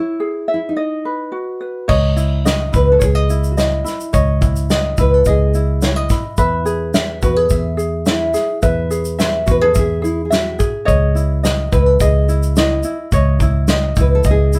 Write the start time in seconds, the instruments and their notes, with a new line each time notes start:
Already playing: nylon-string guitar E4, ukulele E4 C#5
0.20 ukulele G#4
0.48 ukulele E5
0.54 nylon-string guitar E4
0.69 nylon-string guitar D#4
0.76 ukulele D#5
1.05 ukulele B4
1.32 ukulele F#4
1.61 ukulele B4
1.88 fingered electric bass C#2, ukulele C#5 D#5, kick, crash
2.16 ukulele E4, shaker
2.45 ukulele D#5, snare, shaker
2.73 fingered electric bass C#2, ukulele E4, nylon-string guitar B4, kick, shaker
2.92 nylon-string guitar A4
2.99 fingered electric bass C#2, ukulele C#5, kick, shaker
3.04 nylon-string guitar G#4
3.15 ukulele D#5
3.30 ukulele E4, shaker
3.44 shaker
3.51 nylon-string guitar F#4
3.57 nylon-string guitar E4, ukulele D#5, snare, shaker
3.84 ukulele E4, snare, shaker
4.00 shaker
4.13 fingered electric bass C#2, ukulele C#5 D#5, kick, shaker
4.41 ukulele E4, kick, shaker
4.56 shaker
4.70 ukulele D#5, snare, shaker
4.97 fingered electric bass C#2, ukulele E4, nylon-string guitar B4, kick, shaker
5.14 nylon-string guitar A4
5.25 fingered electric bass C#2, nylon-string guitar G#4, ukulele D#5, kick, shaker
5.54 ukulele E4, shaker
5.82 nylon-string guitar E4, ukulele C#5, snare, shaker
5.96 ukulele D#5
6.10 ukulele E4, kick, snare, shaker
6.37 fingered electric bass E2, ukulele B4 E5, kick, shaker
6.65 ukulele G#4, shaker
6.94 ukulele E5, snare, shaker
7.22 fingered electric bass E2, ukulele F#4, nylon-string guitar B4, kick, shaker
7.36 ukulele G#4, nylon-string guitar A4
7.50 fingered electric bass E2, nylon-string guitar G#4, ukulele E5, kick, shaker
7.77 ukulele G#4, shaker
8.06 nylon-string guitar E4, ukulele E5, snare, shaker
8.34 ukulele G#4, snare, shaker
8.62 fingered electric bass E2, ukulele B4 E5, kick, shaker
8.91 ukulele G#4, shaker
9.05 shaker
9.19 ukulele E5, snare, shaker
9.46 fingered electric bass E2, ukulele F#4, kick, shaker
9.51 nylon-string guitar B4
9.61 ukulele G#4, nylon-string guitar A4
9.74 fingered electric bass E2, ukulele E5, kick, shaker
9.79 nylon-string guitar G#4
10.02 nylon-string guitar E4, ukulele G#4, shaker
10.25 nylon-string guitar G#4
10.30 nylon-string guitar F#4, ukulele E5, snare, shaker
10.59 ukulele G#4, kick, shaker
10.85 fingered electric bass C#2, ukulele C#5 D#5, kick, shaker
11.15 ukulele E4, shaker
11.43 ukulele D#5, snare, shaker
11.72 fingered electric bass C#2, ukulele E4, nylon-string guitar B4, kick, shaker
11.86 nylon-string guitar A4
12.00 fingered electric bass C#2, nylon-string guitar G#4, ukulele D#5, kick, shaker
12.29 ukulele E4, shaker
12.43 shaker
12.56 nylon-string guitar E4, ukulele D#5, snare, shaker
12.83 ukulele E4, shaker
13.12 fingered electric bass C#2, ukulele C#5 D#5, kick, shaker
13.40 ukulele E4, kick, shaker
13.68 ukulele D#5, snare, shaker
13.96 fingered electric bass C#2, ukulele E4, kick, shaker
14.01 nylon-string guitar B4
14.15 nylon-string guitar A4
14.24 fingered electric bass C#2, ukulele D#5, kick, shaker
14.31 nylon-string guitar G#4
14.53 ukulele E4, shaker